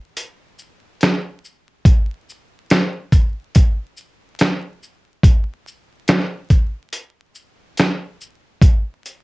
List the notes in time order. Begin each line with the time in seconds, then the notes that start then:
0.17 closed hi-hat
0.59 shaker
1.01 finger snap, snare, closed hi-hat
1.45 shaker
1.85 kick, closed hi-hat
2.29 shaker
2.70 finger snap, snare, closed hi-hat
3.12 kick, closed hi-hat, shaker
3.55 kick, closed hi-hat
3.97 shaker
4.39 finger snap, snare, closed hi-hat
4.83 shaker
5.23 kick, closed hi-hat
5.67 shaker
6.08 finger snap, snare, closed hi-hat
6.50 kick, closed hi-hat, shaker
6.93 closed hi-hat
7.35 shaker
7.77 finger snap, snare, closed hi-hat
8.21 shaker
8.61 kick, closed hi-hat
9.06 closed hi-hat, shaker